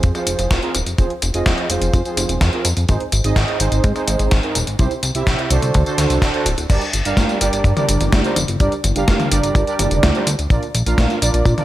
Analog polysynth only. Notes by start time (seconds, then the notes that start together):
Already playing: F3 C4 F4 G#4 C5
0.15 F3 C4 F4 G#4 C5
0.62 F3 C4 F4 G#4 A#4
0.98 F3 C4 F4 G#4 C5
1.34 F3 C4 F4 G#4 D#5
1.70 F3 C4 F4 G#4 C5
2.05 F3 C4 F4 G#4 C5
2.53 F3 C4 F4 G#4 A#4
2.88 G#2 C4 D#4 G#4 C5
3.24 G#2 C4 D#4 G#4 D#5
3.60 G#2 C4 D#4 G#4 C5
3.96 G#2 C4 D#4 G#4 C5
4.43 G#2 C4 D#4 G#4 A#4
4.79 C3 C4 E4 G4 C5
5.15 C3 C4 E4 G4 E5
5.50 D3 D4 F#4 A4 C5
5.86 D3 D4 F#4 A4 C5
6.34 D3 D4 F#4 A4 C5
6.69 G3 D4 G4 A#4 D5
7.05 G3 D4 G4 A#4 F5
7.41 G3 D4 G4 A#4 D5
7.77 G3 D4 G4 A#4 D5
8.24 G3 D4 G4 A#4 C5
8.60 G3 D4 G4 A#4 D5
8.96 G3 D4 G4 A#4 F5
9.31 G3 D4 G4 A#4 D5
9.67 G3 D4 G4 A#4 D5
10.15 G3 D4 G4 A#4 C5
10.51 A#2 D4 F4 A#4 D5
10.86 A#2 D4 F4 A#4 F5
11.22 A#2 D4 F4 A#4 D5
11.58 A#2 D4 F4 A#4 D5